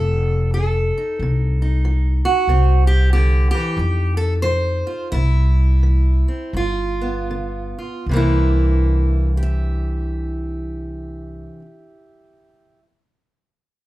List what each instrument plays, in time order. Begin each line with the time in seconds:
Already playing: upright bass F1, steel-string acoustic guitar F2 A4
0.54 steel-string acoustic guitar F3 A4
0.98 steel-string acoustic guitar D#4
1.19 upright bass C2, steel-string acoustic guitar C3
1.62 steel-string acoustic guitar D#4
1.85 steel-string acoustic guitar F3
2.25 steel-string acoustic guitar F#4
2.47 upright bass C2, steel-string acoustic guitar C3 C4
2.87 steel-string acoustic guitar G4
3.13 steel-string acoustic guitar D3 G4
3.51 steel-string acoustic guitar E3 G4
3.77 upright bass F2, steel-string acoustic guitar F2 D#4
4.17 steel-string acoustic guitar A4
4.42 steel-string acoustic guitar F3 C5
4.87 steel-string acoustic guitar F4
5.12 upright bass C2, steel-string acoustic guitar C3 E4
5.83 steel-string acoustic guitar E3
6.28 steel-string acoustic guitar C4
6.53 upright bass G1, steel-string acoustic guitar G2 F4
7.02 steel-string acoustic guitar B3
7.31 steel-string acoustic guitar D3
7.79 steel-string acoustic guitar F4
8.06 upright bass C2, steel-string acoustic guitar C3
8.11 steel-string acoustic guitar E3 A#3
8.16 steel-string acoustic guitar D4 E4
9.37 steel-string acoustic guitar G4
9.43 steel-string acoustic guitar E5